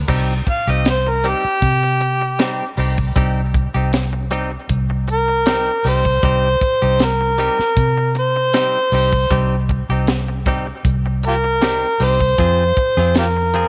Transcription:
0.08 C2 G3 C4 D#4 G4, kick, crash
0.47 F5, muted clean electric guitar stroke, muted fingered electric bass stroke, kick, closed hi-hat
0.67 C2 C4 D#4 G4 D#5
0.85 snare, closed hi-hat
0.90 C5
1.07 A#4, muted clean electric guitar stroke
1.24 G3 C4 D#4 G4, closed hi-hat
1.28 G4
1.44 muted fingered electric bass stroke, muted clean electric guitar stroke
1.62 C3, kick, closed hi-hat
1.83 muted clean electric guitar stroke
2.01 muted clean electric guitar stroke, closed hi-hat
2.21 muted clean electric guitar stroke
2.39 G3 C4 D#4 G4, snare, closed hi-hat
2.77 C2 G3 C4 D#4 G4, open hi-hat
2.98 muted clean electric guitar stroke, kick
3.16 C2 G3 C4 D#4 G4, kick, closed hi-hat
3.54 muted clean electric guitar stroke, kick, closed hi-hat
3.74 C2 C4 D#4 G4
3.92 muted clean electric guitar stroke, snare, closed hi-hat
4.13 muted clean electric guitar stroke
4.31 G3 C4 D#4 G4, closed hi-hat
4.52 muted clean electric guitar stroke
4.69 C2, kick, closed hi-hat
4.90 muted clean electric guitar stroke
5.08 muted clean electric guitar stroke, closed hi-hat
5.12 A#4
5.28 muted clean electric guitar stroke
5.46 G3 C4 D#4 G4, snare, closed hi-hat
5.84 C2 G3 C4 D#4 G4, open hi-hat
5.89 C5
6.05 muted clean electric guitar stroke, kick
6.23 C2 G3 C4 D#4 G4, kick, closed hi-hat
6.61 muted fingered electric bass stroke, muted clean electric guitar stroke, kick, closed hi-hat
6.82 C2 C4 D#4 G4
6.99 muted clean electric guitar stroke, snare, closed hi-hat
7.05 A#4
7.21 muted clean electric guitar stroke
7.38 G3 C4 D#4 G4, closed hi-hat
7.59 muted fingered electric bass stroke, muted clean electric guitar stroke, snare
7.77 C3, kick, closed hi-hat
7.98 muted clean electric guitar stroke
8.15 muted clean electric guitar stroke, closed hi-hat
8.20 C5
8.36 muted clean electric guitar stroke
8.53 G3 C4 D#4 G4, snare, closed hi-hat
8.92 C2 G3 C4 D#4 G4, open hi-hat
9.13 muted clean electric guitar stroke, kick
9.30 C2 G3 C4 D#4 G4, kick, closed hi-hat
9.69 muted clean electric guitar stroke, kick, closed hi-hat
9.89 C2 C4 D#4 G4
10.07 snare, closed hi-hat
10.28 muted clean electric guitar stroke
10.46 G3 C4 D#4 G4, kick, closed hi-hat
10.67 muted clean electric guitar stroke
10.85 C2, kick, closed hi-hat
11.06 muted clean electric guitar stroke
11.23 muted clean electric guitar stroke, closed hi-hat
11.27 F4 G4 A#4
11.44 muted clean electric guitar stroke
11.61 G3 C4 D#4 G4, snare, closed hi-hat
12.00 C2 G3 C4 D#4 G4 C5, open hi-hat
12.21 muted clean electric guitar stroke, kick
12.38 F2 F3 C4 F4 G#4, kick, closed hi-hat
12.77 muted fingered electric bass stroke, muted clean electric guitar stroke, kick, closed hi-hat
12.97 F2 C4 F4 G#4, snare
13.15 F4 G4 A#4, muted clean electric guitar stroke, snare, closed hi-hat
13.36 muted clean electric guitar stroke
13.54 F3 C4 F4 G#4, closed hi-hat

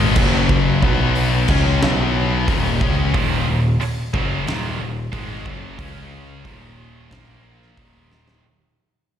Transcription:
Already playing: G#1 G#2 D#3 G#3
0.16 F#1 F#2 C#3 F#3, kick, crash
0.49 kick
0.82 B1 B2 F#3 B3, kick
1.15 open hi-hat
1.48 C#2 C#3 G#3 C#4, kick, crash
1.82 B1 B2 F#3 B3, snare
2.48 D#1 D#2 A#2 D#3, kick, open hi-hat
2.81 C#2 C#3 G#3 C#4, kick
3.13 D#1 D#2 A#2 D#3, kick, open hi-hat
3.48 D#1 D#2 A#2
3.81 muted picked electric bass stroke, muted distorted electric guitar stroke, open hi-hat
4.14 F#1 F#2 C#3 F#3, kick
4.46 D#1 D#2 A#2 D#3, snare, open hi-hat
4.79 D#1 D#2 A#2
5.12 G#1 G#2 D#3 G#3, kick, open hi-hat
5.46 F#1 F#2 C#3 F#3, kick
5.78 C#2 C#3 G#3 C#4, kick, open hi-hat
6.45 D#1 D#2 A#2 D#3, kick, open hi-hat
7.10 A#1 A#2 F3 A#3, kick, snare, open hi-hat
7.63 snare
7.77 D#1 D#2 A#2 D#3, kick, open hi-hat
8.12 snare
8.28 snare

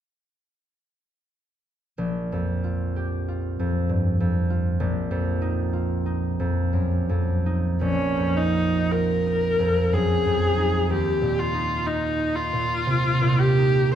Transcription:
1.98 A#1
2.32 F2
2.64 F4
2.96 G4
3.28 F4
3.59 F2
3.89 G2
4.20 F2
4.50 F4
4.80 A#1
5.11 F2
5.42 D#4
5.73 F4
6.06 D#4
6.40 F2
6.73 F#2
7.09 F2
7.46 D#4
7.81 A#1 C#4
8.18 F2
8.37 D#4
8.56 D#4
8.92 F4 A#4
9.26 D#4
9.59 F2
9.92 F#2 G#4
10.26 F2
10.58 D#4
10.90 D#2 G4
11.22 A#2
11.39 F4
11.54 D#4
11.86 D#4 F4
12.20 D#4
12.35 F4
12.53 A#2
12.87 C3
13.21 A#2
13.39 G4
13.58 D#4

